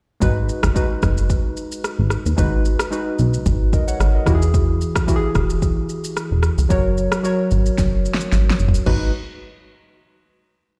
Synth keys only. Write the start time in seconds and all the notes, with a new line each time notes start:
0.20 G#3 D#4 F#4 B4
0.74 G#3 D#4 F#4 B4
2.37 G#3 D#4 F#4 B4
2.91 G#3 D#4 F#4 B4
3.73 A#4 D#5
3.88 C#5 F#5
4.15 A#4 D#5
4.26 E3 E4 F#4 G4
4.35 G#4
5.07 E3 E4 F#4 G4
5.16 G#4
6.69 F#3 F#4 A#4 C#5
7.23 F#3 F#4 A#4 C#5
8.86 G#3 D#4 F#4 B4